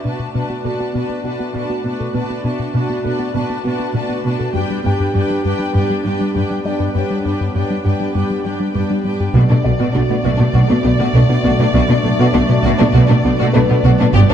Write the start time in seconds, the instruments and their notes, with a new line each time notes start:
Already playing: analog synth pad A3 B3 F#4 D5, felt piano E5
0.04 cello section B2, analog synth bass B2, synth arpeggio sound D4, viola section D4 F#4, violin section B4 A5
0.19 analog synth bass B2
0.34 cello section B2, analog synth bass B2, synth arpeggio sound B3, viola section D4 F#4, violin section B4 A5
0.50 analog synth bass B3, synth arpeggio sound F#4
0.64 cello section B2, analog synth bass B2, viola section D4 F#4, synth arpeggio sound A4, violin section B4 A5
0.80 analog synth bass B3, synth arpeggio sound F#4
0.95 cello section B2, analog synth bass B2, synth arpeggio sound B3, viola section D4 F#4, violin section B4 A5
1.09 analog synth bass B3
1.24 cello section B2, analog synth bass B3, viola section D4 F#4, synth arpeggio sound F#4, violin section B4 A5
1.39 analog synth bass B3, synth arpeggio sound F#4
1.54 cello section B2, analog synth bass B2, synth arpeggio sound B3, viola section D4 F#4, violin section B4 A5
1.70 analog synth bass B3, synth arpeggio sound F#4
1.84 cello section B2, analog synth bass B3, viola section D4 F#4, violin section B4 A5
2.00 analog synth bass B2, synth arpeggio sound A4
2.14 cello section B2, analog synth bass B2, synth arpeggio sound B3, viola section D4 F#4, violin section B4 A5
2.30 analog synth bass B3
2.44 analog synth bass B2, cello section B2, synth arpeggio sound D4, viola section D4 F#4, violin section B4 A5
2.59 analog synth bass B2
2.74 analog synth bass B2, cello section B2, synth arpeggio sound B3, viola section D4 F#4, violin section B4 A5
2.89 analog synth bass B3, synth arpeggio sound F#4
3.04 cello section B2, analog synth bass B2, viola section D4 F#4, synth arpeggio sound A4, violin section B4 A5
3.19 analog synth bass B3, synth arpeggio sound F#4
3.34 analog synth bass B2, cello section B2, synth arpeggio sound B3, viola section D4 F#4, violin section B4 A5
3.50 analog synth bass B3
3.64 cello section B2, analog synth bass B3, viola section D4 F#4, synth arpeggio sound F#4, violin section B4 A5
3.79 analog synth bass B3, synth arpeggio sound F#4
3.94 cello section B2, analog synth bass B2, synth arpeggio sound B3, viola section D4 F#4, violin section B4 A5
4.08 analog synth bass B3, synth arpeggio sound F#4
4.24 cello section B2, analog synth bass B3, viola section D4 F#4, violin section B4 A5
4.39 analog synth bass B2, synth arpeggio sound A4
4.53 cello section G2, analog synth bass G2, synth arpeggio sound G3, analog synth pad G3 B3 D4 G4, viola section D4 G4, violin section B4 G5
4.70 analog synth bass G3
4.84 cello section G2, analog synth bass G2, synth arpeggio sound B3, viola section D4 G4, felt piano G4 G5, violin section B4 G5
5.00 analog synth bass G2
5.14 cello section G2, analog synth bass G2, synth arpeggio sound G3, viola section D4 G4, violin section B4 G5
5.29 analog synth bass G3, synth arpeggio sound D4
5.44 cello section G2, analog synth bass G2, viola section D4 G4, synth arpeggio sound G4, violin section B4 G5
5.58 analog synth bass G3, synth arpeggio sound D4
5.74 cello section G2, analog synth bass G2, synth arpeggio sound G3, viola section D4 G4, violin section B4 G5
5.90 analog synth bass G3
6.04 cello section G2, analog synth bass G3, synth arpeggio sound D4, viola section D4 G4, violin section B4 G5
6.19 analog synth bass G3, synth arpeggio sound D4
6.35 cello section G2, analog synth bass G2, synth arpeggio sound G3, viola section D4 G4, violin section B4 G5
6.50 analog synth bass G3, synth arpeggio sound D4
6.64 cello section G2, analog synth bass G3, viola section D4 G4, felt piano D4 D5, violin section B4 G5
6.80 analog synth bass G2, synth arpeggio sound G4
6.94 cello section G2, analog synth bass G2, synth arpeggio sound G3, viola section D4 G4, violin section B4 G5, felt piano C#5
7.10 analog synth bass G3
7.24 cello section G2, analog synth bass G2, synth arpeggio sound B3, viola section D4 G4, violin section B4 G5
7.41 analog synth bass G2
7.54 cello section G2, analog synth bass G2, synth arpeggio sound G3, viola section D4 G4, violin section B4 G5
7.70 analog synth bass G3, synth arpeggio sound D4
7.84 cello section G2, analog synth bass G2, viola section D4 G4, synth arpeggio sound G4, violin section B4 G5
8.00 analog synth bass G3, synth arpeggio sound D4
8.14 cello section G2, analog synth bass G2, synth arpeggio sound G3, viola section D4 G4, violin section B4 G5
8.30 analog synth bass G3
8.44 cello section G2, analog synth bass G3, viola section D4 G4, synth arpeggio sound D4, violin section B4 G5
8.60 analog synth bass G3, synth arpeggio sound D4
8.73 cello section G2, analog synth bass G2, synth arpeggio sound G3, viola section D4 G4, violin section B4 G5
8.90 analog synth bass G3, synth arpeggio sound D4
9.03 cello section G2, analog synth bass G3, viola section D4 G4, violin section B4 G5
9.20 analog synth bass G2, synth arpeggio sound G4
9.34 double bass section B1, cello section B2, analog synth bass B2, french horn section A3 D4, viola section A3, analog synth pad A3 B3 F#4 D5, synth arpeggio sound B3, violin section F#4 D5
9.50 cello section B2, analog synth bass B2, viola section A3, violin section D4, synth arpeggio sound D4
9.63 double bass section B1, cello section B2, analog synth bass B2, viola section A3, violin section B3, synth arpeggio sound A4, felt piano D5
9.78 analog synth bass B2, cello section B2, viola section A3, synth arpeggio sound B3, violin section F#4
9.93 double bass section B1, cello section B2, viola section A3, analog synth bass B3, violin section D4, synth arpeggio sound F#4
10.08 cello section B2, analog synth bass B2, viola section A3, violin section B3, synth arpeggio sound D4
10.23 double bass section B1, cello section B2, analog synth bass B2, viola section A3, synth arpeggio sound B3, violin section F#4
10.37 cello section B2, analog synth bass B2, viola section A3, violin section D4, synth arpeggio sound D4
10.53 double bass section B1, cello section B2, analog synth bass B2, viola section A3, synth arpeggio sound B3, violin section F#4
10.68 cello section B2, viola section A3, analog synth bass B3, violin section D4, synth arpeggio sound F#4
10.83 double bass section B1, cello section B2, viola section A3, violin section B3, analog synth bass B3, synth arpeggio sound F#4
10.98 cello section B2, analog synth bass B2, viola section A3, synth arpeggio sound B3, violin section F#4
11.14 double bass section B1, cello section B2, analog synth bass B2, viola section A3, violin section D4, synth arpeggio sound A4
11.29 cello section B2, analog synth bass B2, viola section A3, violin section B3, synth arpeggio sound D4
11.43 double bass section B1, cello section B2, analog synth bass B2, viola section A3, synth arpeggio sound B3, violin section F#4
11.59 cello section B2, analog synth bass B2, viola section A3, synth arpeggio sound D4, violin section D4
11.73 double bass section B1, cello section B2, analog synth bass B2, viola section A3, synth arpeggio sound B3, violin section F#4
11.89 analog synth bass B2, cello section B2, viola section A3, synth arpeggio sound D4, violin section D4
12.04 double bass section B1, analog synth bass B2, cello section B2, viola section A3, violin section B3, synth arpeggio sound A4
12.18 cello section B2, analog synth bass B2, viola section A3, synth arpeggio sound B3, violin section F#4
12.34 double bass section B1, cello section B2, viola section A3, analog synth bass B3, violin section D4, synth arpeggio sound F#4
12.48 cello section B2, analog synth bass B2, viola section A3, violin section B3, synth arpeggio sound D4
12.62 double bass section B1, cello section B2, analog synth bass B2, viola section A3, synth arpeggio sound B3, violin section F#4
12.78 cello section B2, analog synth bass B2, viola section A3, violin section D4, synth arpeggio sound D4
12.93 double bass section B1, cello section B2, analog synth bass B2, viola section A3, synth arpeggio sound B3, violin section F#4
13.08 cello section B2, viola section A3, analog synth bass B3, violin section D4, synth arpeggio sound F#4
13.24 double bass section B1, cello section B2, viola section A3, violin section B3, analog synth bass B3, synth arpeggio sound F#4
13.39 cello section B2, analog synth bass B2, viola section A3, synth arpeggio sound B3, violin section F#4
13.53 double bass section B1, cello section B2, analog synth bass B2, viola section A3, violin section D4, synth arpeggio sound A4, felt piano B4
13.69 cello section B2, analog synth bass B2, viola section A3, violin section B3, synth arpeggio sound D4
13.84 double bass section B1, cello section B2, analog synth bass B2, viola section A3, synth arpeggio sound B3, violin section F#4
13.99 cello section B2, analog synth bass B2, viola section A3, violin section D4, synth arpeggio sound D4
14.13 double bass section G1, analog synth bass G2, cello section G2, synth arpeggio sound G3, analog synth pad G3 B3 G4 D5, french horn section B3 D4, viola section B3, violin section G4 D5
14.30 analog synth bass G2, cello section G2, synth arpeggio sound B3, viola section B3, violin section D4